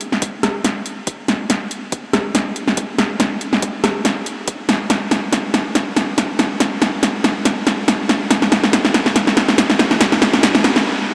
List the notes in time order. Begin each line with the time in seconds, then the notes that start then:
0.01 closed hi-hat
0.12 snare
0.22 kick, closed hi-hat
0.43 cross-stick, snare, closed hi-hat
0.65 kick, snare, closed hi-hat
0.86 closed hi-hat
1.07 kick, closed hi-hat
1.28 snare, closed hi-hat
1.50 kick, snare, closed hi-hat
1.71 closed hi-hat
1.92 kick, closed hi-hat
2.13 cross-stick, snare, closed hi-hat
2.35 kick, snare, closed hi-hat
2.56 closed hi-hat
2.68 snare
2.77 kick, closed hi-hat
2.98 cross-stick, snare, closed hi-hat
3.20 kick, snare, closed hi-hat
3.41 closed hi-hat
3.53 snare
3.62 kick, closed hi-hat
3.84 cross-stick, snare, closed hi-hat
4.05 kick, snare, closed hi-hat
4.26 closed hi-hat
4.48 kick, closed hi-hat
4.69 snare, closed hi-hat
4.90 kick, snare, closed hi-hat
5.11 snare, closed hi-hat
5.33 kick, snare, closed hi-hat
5.54 snare, closed hi-hat
5.75 kick, snare, closed hi-hat
5.96 snare, closed hi-hat
6.18 kick, snare, closed hi-hat
6.39 snare, closed hi-hat
6.60 kick, snare, closed hi-hat
6.82 snare, closed hi-hat
7.03 kick, snare, closed hi-hat
7.24 snare, closed hi-hat
7.45 kick, snare, closed hi-hat
7.67 snare, closed hi-hat
7.88 kick, snare, closed hi-hat
8.09 snare, closed hi-hat
8.31 kick, snare, closed hi-hat
8.42 snare
8.52 snare, closed hi-hat
8.64 snare
8.73 kick, snare, closed hi-hat
8.85 snare
8.94 snare, closed hi-hat
9.06 snare
9.16 kick, snare, closed hi-hat
9.27 snare
9.37 snare, closed hi-hat
9.49 snare
9.58 kick, snare, closed hi-hat
9.70 snare
9.79 snare, closed hi-hat
9.91 snare
10.01 kick, snare, closed hi-hat
10.12 snare
10.22 snare, closed hi-hat
10.33 snare
10.43 kick, snare, closed hi-hat
10.55 snare
10.64 snare, closed hi-hat
10.76 snare